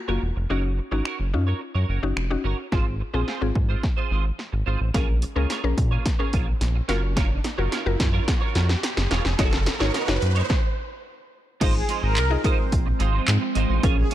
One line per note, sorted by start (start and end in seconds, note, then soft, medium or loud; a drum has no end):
0.08 0.18 F#1 medium
0.08 0.32 A#3 medium
0.08 0.21 C#4 medium
0.08 0.32 F4 medium
0.08 0.21 F4 medium
0.08 0.32 F#4 loud
0.08 0.22 A#4 medium
0.08 0.22 C#5 medium
0.22 0.32 E1 medium
0.22 muted clean electric guitar stroke soft
0.36 0.46 F1 medium
0.36 muted clean electric guitar stroke soft
0.50 0.80 F#1 loud
0.50 0.71 C#4 medium
0.50 0.74 C#4 medium
0.50 0.74 D#4 medium
0.50 0.64 F#4 medium
0.50 0.74 F#4 loud
0.50 0.63 A#4 medium
0.50 0.63 C#5 medium
0.64 muted clean electric guitar stroke soft
0.78 muted clean electric guitar stroke soft
0.91 1.02 G#1 medium
0.91 1.16 C#4 medium
0.91 1.04 C#4 soft
0.91 1.16 D#4 medium
0.91 1.16 F#4 medium
0.91 1.05 F#4 medium
0.91 1.05 A#4 medium
0.91 1.06 C#5 medium
1.05 1.27 C#4 medium
1.05 1.19 F#4 medium
1.05 1.19 A#4 medium
1.05 1.18 C#5 medium
1.05 finger snap loud
1.19 1.35 F#1 medium
1.19 muted clean electric guitar stroke soft
1.33 1.54 F#2 medium
1.33 1.73 C#4 medium
1.33 1.73 D#4 medium
1.33 1.73 F4 loud
1.33 muted clean electric guitar stroke soft
1.47 1.60 C#4 soft
1.47 1.60 F#4 medium
1.47 1.61 A#4 medium
1.47 1.61 C#5 medium
1.61 muted clean electric guitar stroke soft
1.75 1.85 F#2 medium
1.75 1.87 C#4 medium
1.75 1.88 F#4 medium
1.75 1.89 A#4 medium
1.75 1.89 C#5 medium
1.88 1.99 F#1 medium
1.88 2.05 C#4 medium
1.88 2.03 F#4 medium
1.88 2.02 A#4 medium
1.88 2.01 C#5 medium
2.03 2.13 F#1 medium
2.03 2.19 C#4 medium
2.03 2.19 D#4 medium
2.03 2.19 F#4 loud
2.03 muted clean electric guitar stroke soft
2.17 2.37 F1 medium
2.17 finger snap loud
2.17 muted clean electric guitar stroke soft
2.30 2.54 C#4 medium
2.30 2.55 D#4 medium
2.30 2.55 F#4 loud
2.30 muted clean electric guitar stroke soft
2.44 2.54 G1 medium
2.44 2.65 C#4 medium
2.44 2.58 F#4 medium
2.44 2.58 A#4 medium
2.44 2.57 C#5 medium
2.58 muted clean electric guitar stroke medium
2.72 3.02 G#1 loud
2.72 2.93 C4 medium
2.72 2.96 C4 medium
2.72 2.96 F4 medium
2.72 2.86 F4 medium
2.72 2.96 G#4 loud
2.72 2.85 G#4 medium
2.72 2.85 C5 loud
2.72 kick loud
2.72 snare medium
2.72 riser medium
2.86 muted clean electric guitar stroke soft
3.00 muted clean electric guitar stroke soft
3.14 3.24 A#1 medium
3.14 3.30 C4 medium
3.14 3.26 C4 soft
3.14 3.30 F4 medium
3.14 3.27 F4 medium
3.14 3.30 G#4 medium
3.14 3.27 G#4 medium
3.14 3.28 C5 medium
3.27 3.49 C4 medium
3.27 3.41 F4 medium
3.27 3.41 G#4 medium
3.27 3.40 C5 medium
3.27 snare medium
3.41 3.52 G#1 loud
3.41 4.05 C4 medium
3.41 4.05 F4 medium
3.41 4.05 G#4 loud
3.41 muted clean electric guitar stroke soft
3.55 3.75 G#2 medium
3.55 muted clean electric guitar stroke soft
3.55 kick medium
3.69 3.82 C4 medium
3.69 3.82 F4 medium
3.69 3.83 G#4 medium
3.69 3.83 C5 medium
3.83 muted clean electric guitar stroke soft
3.83 kick medium
3.83 snare medium
3.97 4.09 C4 medium
3.97 4.10 F4 medium
3.97 4.11 G#4 medium
3.97 4.11 C5 medium
4.11 4.31 G#1 loud
4.11 4.27 C4 medium
4.11 4.25 F4 medium
4.11 4.24 G#4 medium
4.11 4.23 C5 medium
4.25 muted clean electric guitar stroke soft
4.39 muted clean electric guitar stroke soft
4.39 snare medium
4.52 4.63 G#1 medium
4.52 muted clean electric guitar stroke soft
4.66 4.77 G#1 medium
4.66 4.88 C4 medium
4.66 4.80 F4 medium
4.66 4.80 G#4 medium
4.66 4.79 C5 medium
4.80 4.91 A1 medium
4.80 muted clean electric guitar stroke medium
4.94 5.24 A#1 loud
4.94 5.15 A#3 medium
4.94 5.18 C#4 medium
4.94 5.08 F4 medium
4.94 5.18 G#4 medium
4.94 5.08 G#4 medium
4.94 5.18 A#4 loud
4.94 5.07 C#5 medium
4.94 kick loud
4.94 snare medium
4.94 closed hi-hat medium
5.08 muted clean electric guitar stroke soft
5.22 muted clean electric guitar stroke soft
5.22 closed hi-hat medium
5.36 5.46 C#2 medium
5.36 5.48 A#3 soft
5.36 5.52 C#4 medium
5.36 5.49 F4 medium
5.36 5.52 G#4 medium
5.36 5.50 G#4 medium
5.36 5.52 A#4 medium
5.36 5.50 C#5 medium
5.49 5.71 A#3 medium
5.49 5.64 F4 medium
5.49 5.63 G#4 medium
5.49 5.62 C#5 medium
5.49 snare medium
5.49 closed hi-hat medium
5.64 5.74 A#1 medium
5.64 5.96 C#4 medium
5.64 5.96 G#4 medium
5.64 5.96 A#4 loud
5.64 muted clean electric guitar stroke soft
5.78 5.98 A#2 loud
5.78 muted clean electric guitar stroke soft
5.78 kick loud
5.78 closed hi-hat medium
5.91 6.04 A#3 soft
5.91 6.05 F4 medium
5.91 6.05 G#4 medium
5.91 6.05 C#5 medium
6.05 muted clean electric guitar stroke soft
6.05 kick medium
6.05 snare medium
6.05 closed hi-hat medium
6.19 6.32 A#3 medium
6.19 6.75 C#4 medium
6.19 6.32 F4 medium
6.19 6.75 G#4 medium
6.19 6.33 G#4 medium
6.19 6.75 A#4 medium
6.19 6.34 C#5 medium
6.33 6.53 A#1 medium
6.33 6.50 A#3 medium
6.33 6.47 F4 medium
6.33 6.47 G#4 medium
6.33 6.46 C#5 medium
6.33 kick loud
6.33 closed hi-hat medium
6.47 muted clean electric guitar stroke soft
6.61 6.81 A#1 loud
6.61 muted clean electric guitar stroke soft
6.61 snare medium
6.61 closed hi-hat loud
6.75 muted clean electric guitar stroke soft
6.88 7.39 F#1 loud
6.88 7.10 C#4 medium
6.88 7.44 F4 medium
6.88 7.02 F4 medium
6.88 7.44 F#4 medium
6.88 7.45 A#4 loud
6.88 7.02 A#4 medium
6.88 7.01 C#5 medium
6.88 snare medium
6.88 closed hi-hat medium
7.02 muted clean electric guitar stroke soft
7.16 7.38 C#4 medium
7.16 7.30 F4 medium
7.16 7.30 A#4 medium
7.16 7.29 C#5 medium
7.16 kick loud
7.16 snare medium
7.16 closed hi-hat medium
7.30 muted clean electric guitar stroke medium
7.44 muted clean electric guitar stroke soft
7.44 snare medium
7.44 closed hi-hat medium
7.58 7.68 F#1 medium
7.58 7.70 C#4 medium
7.58 7.74 F4 medium
7.58 7.71 F4 medium
7.58 7.74 F#4 medium
7.58 7.72 A#4 medium
7.58 7.74 A#4 medium
7.58 7.72 C#5 medium
7.71 7.93 C#4 medium
7.71 7.86 F4 medium
7.71 7.85 A#4 medium
7.71 7.84 C#5 loud
7.71 snare medium
7.71 closed hi-hat loud
7.85 7.96 F#1 loud
7.85 8.50 F4 medium
7.85 8.50 F#4 medium
7.85 8.50 A#4 loud
7.85 muted clean electric guitar stroke medium
7.99 8.20 F#2 loud
7.99 muted clean electric guitar stroke soft
7.99 kick loud
7.99 snare loud
7.99 closed hi-hat medium
8.13 8.26 C#4 medium
8.13 8.26 F4 medium
8.13 8.27 A#4 medium
8.13 8.27 C#5 medium
8.27 muted clean electric guitar stroke medium
8.27 kick medium
8.27 snare loud
8.27 closed hi-hat medium
8.41 8.53 C#4 medium
8.41 8.54 F4 medium
8.41 8.55 A#4 medium
8.41 8.55 C#5 medium
8.55 8.76 F2 medium
8.55 8.72 C#4 medium
8.55 8.69 F4 medium
8.55 8.68 A#4 medium
8.55 8.68 C#5 medium
8.55 snare loud
8.55 closed hi-hat medium
8.69 muted clean electric guitar stroke soft
8.69 snare loud
8.83 muted clean electric guitar stroke soft
8.83 snare loud
8.83 closed hi-hat loud
8.97 9.07 F#1 medium
8.97 muted clean electric guitar stroke medium
8.97 snare loud
9.10 9.21 E1 medium
9.10 9.32 C#4 loud
9.10 9.25 F4 medium
9.10 9.24 A#4 medium
9.10 9.23 C#5 loud
9.10 snare loud
9.10 closed hi-hat medium
9.24 9.35 F1 medium
9.24 muted clean electric guitar stroke medium
9.24 snare loud
9.38 9.69 F#1 loud
9.38 9.60 A#3 loud
9.38 9.63 D#4 medium
9.38 9.52 D#4 medium
9.38 9.63 F#4 medium
9.38 9.52 F#4 loud
9.38 9.63 C#5 loud
9.38 9.51 C#5 loud
9.38 kick loud
9.38 snare loud
9.38 closed hi-hat medium
9.52 muted clean electric guitar stroke soft
9.52 snare loud
9.66 muted clean electric guitar stroke soft
9.66 snare loud
9.66 closed hi-hat medium
9.80 9.91 G#1 medium
9.80 9.92 A#3 medium
9.80 9.96 D#4 medium
9.80 9.93 D#4 medium
9.80 9.94 F#4 medium
9.80 9.97 F#4 medium
9.80 9.94 C#5 medium
9.80 9.97 C#5 medium
9.80 snare loud
9.94 10.15 A#3 loud
9.94 10.08 D#4 loud
9.94 10.07 F#4 medium
9.94 10.07 C#5 loud
9.94 snare loud
9.94 closed hi-hat loud
10.08 10.18 F#1 loud
10.08 10.40 D#4 medium
10.08 10.40 F#4 medium
10.08 10.40 C#5 loud
10.08 muted clean electric guitar stroke medium
10.08 snare loud
10.22 10.42 F#2 loud
10.22 muted clean electric guitar stroke soft
10.22 closed hi-hat medium
10.35 10.53 A#3 medium
10.35 10.53 D#4 medium
10.35 10.53 F#4 medium
10.35 10.52 C#5 medium
10.35 closed hi-hat medium
10.50 kick loud
10.50 snare medium
11.61 11.81 G#1 loud
11.61 13.81 F3 medium
11.61 11.82 G#3 medium
11.61 14.14 G#3 medium
11.61 13.81 C4 loud
11.61 12.01 D#4 medium
11.61 11.75 D#4 loud
11.61 12.01 F4 medium
11.61 11.74 F4 medium
11.61 12.01 G#4 medium
11.61 12.01 C5 medium
11.61 11.73 C5 loud
11.61 kick loud
11.61 closed hi-hat medium
11.61 crash loud
11.75 11.85 G#4 medium
11.75 muted clean electric guitar stroke soft
11.88 12.03 G#3 medium
11.88 12.02 D#4 medium
11.88 12.02 F4 medium
11.88 12.01 C5 medium
11.88 closed hi-hat medium
12.02 12.18 G#1 loud
12.02 12.20 G#3 medium
12.02 12.20 D#4 medium
12.02 12.20 F4 medium
12.02 12.23 A#4 medium
12.02 12.19 C5 medium
12.17 12.37 C2 medium
12.17 clap loud
12.17 closed hi-hat loud
12.30 12.38 D#4 medium
12.30 12.39 F4 medium
12.30 12.39 G#4 medium
12.30 12.39 D#5 medium
12.30 muted clean electric guitar stroke medium
12.44 12.65 G#3 medium
12.44 13.08 D#4 medium
12.44 12.58 D#4 medium
12.44 13.08 F4 medium
12.44 12.58 F4 medium
12.44 13.08 G#4 medium
12.44 13.08 A#4 medium
12.44 12.55 C5 medium
12.44 12.57 C5 loud
12.44 kick loud
12.44 closed hi-hat medium
12.58 muted clean electric guitar stroke medium
12.72 12.92 A#1 loud
12.72 muted clean electric guitar stroke soft
12.72 kick loud
12.72 closed hi-hat loud
12.86 muted clean electric guitar stroke soft
12.99 13.20 G#1 loud
12.99 13.14 G#3 medium
12.99 13.13 D#4 medium
12.99 13.13 F4 medium
12.99 13.12 C5 medium
12.99 closed hi-hat medium
13.13 13.26 G#3 medium
13.13 13.27 D#4 medium
13.13 13.27 F4 medium
13.13 13.28 C5 medium
13.27 13.38 G#2 loud
13.27 muted clean electric guitar stroke soft
13.27 clap loud
13.27 closed hi-hat loud
13.41 muted clean electric guitar stroke medium
13.55 13.66 G#1 medium
13.55 13.69 G#3 medium
13.55 13.69 D#4 medium
13.55 13.68 F4 medium
13.55 13.68 C5 medium
13.55 closed hi-hat medium
13.69 13.80 A1 medium
13.69 13.82 G#3 medium
13.69 13.83 D#4 medium
13.69 13.82 F4 medium
13.69 13.84 C5 medium
13.83 14.03 A#1 loud
13.83 14.04 C#4 medium
13.83 14.14 C#4 medium
13.83 13.97 F4 medium
13.83 14.14 F4 medium
13.83 14.14 G#4 medium
13.83 13.96 G#4 medium
13.83 14.14 A#4 medium
13.83 13.96 C#5 medium
13.83 kick loud
13.83 closed hi-hat medium
13.97 14.08 G#4 medium
13.97 muted clean electric guitar stroke soft
14.10 14.14 C#4 medium
14.10 14.14 F4 medium
14.10 closed hi-hat medium